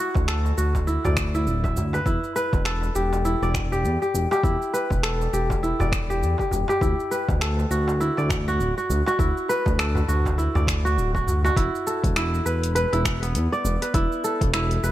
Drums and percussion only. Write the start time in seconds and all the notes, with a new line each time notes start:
0.15 kick, darbuka ka, darbuka tek, cabasa
0.28 finger snap, cabasa
0.45 darbuka ka, cabasa
0.58 cabasa
0.75 kick, darbuka tek, cabasa
0.88 cabasa
1.05 darbuka tek, darbuka dum, cabasa
1.17 finger snap, kick, cabasa
1.35 cabasa
1.47 cabasa
1.64 kick, darbuka tek, cabasa
1.77 darbuka dum, cabasa
1.93 darbuka tek, cabasa
2.06 kick, cabasa
2.24 cabasa
2.36 cabasa
2.53 kick, darbuka ka, darbuka tek, cabasa
2.65 finger snap, cabasa
2.82 darbuka ka, cabasa
2.95 cabasa
3.13 darbuka tek, cabasa
3.25 cabasa
3.43 darbuka ka, cabasa
3.54 finger snap, kick, darbuka tek, darbuka dum, cabasa
3.73 cabasa
3.85 cabasa
4.02 cabasa
4.15 cabasa
4.31 darbuka tek, cabasa
4.43 kick, cabasa
4.62 cabasa
4.74 cabasa
4.90 kick, darbuka ka, cabasa
5.03 finger snap, cabasa
5.21 darbuka ka, cabasa
5.34 cabasa
5.50 kick, darbuka tek, cabasa
5.64 cabasa
5.80 darbuka tek, darbuka dum, cabasa
5.92 finger snap, kick, cabasa
6.11 cabasa
6.23 cabasa
6.38 kick, darbuka tek, cabasa
6.51 darbuka dum, cabasa
6.68 darbuka tek, cabasa
6.81 kick, cabasa
7.00 cabasa
7.12 cabasa
7.29 kick, darbuka ka, darbuka tek, cabasa
7.41 finger snap, cabasa
7.59 darbuka ka, cabasa
7.71 cabasa
7.88 darbuka tek, cabasa
8.01 cabasa
8.17 darbuka ka, cabasa
8.29 finger snap, kick, darbuka tek, darbuka dum, cabasa
8.48 cabasa
8.60 cabasa
8.78 cabasa
8.90 cabasa
9.06 darbuka tek, cabasa
9.19 kick, cabasa
9.37 cabasa
9.48 darbuka ka, cabasa
9.66 kick, darbuka ka, darbuka tek, cabasa
9.79 finger snap, cabasa
9.95 darbuka ka, darbuka dum, cabasa
10.09 cabasa
10.26 kick, darbuka tek, cabasa
10.39 cabasa
10.55 darbuka tek, darbuka dum, cabasa
10.67 finger snap, kick, cabasa
10.86 cabasa
10.98 cabasa
11.15 kick, darbuka tek, cabasa
11.27 darbuka dum, cabasa
11.45 darbuka tek, cabasa
11.57 kick, closed hi-hat, cabasa
11.75 cabasa
11.87 cabasa
12.04 kick, closed hi-hat, cabasa
12.16 finger snap, closed hi-hat, cabasa
12.34 cabasa
12.46 cabasa
12.64 closed hi-hat, cabasa
12.76 closed hi-hat, cabasa
12.93 closed hi-hat, cabasa
13.05 finger snap, kick, cabasa
13.23 closed hi-hat, cabasa
13.35 closed hi-hat, cabasa
13.53 cabasa
13.65 cabasa
13.82 closed hi-hat, cabasa
13.94 kick, closed hi-hat, cabasa
14.12 cabasa
14.24 cabasa
14.41 kick, closed hi-hat, cabasa
14.54 finger snap, closed hi-hat, cabasa
14.71 closed hi-hat, cabasa
14.84 cabasa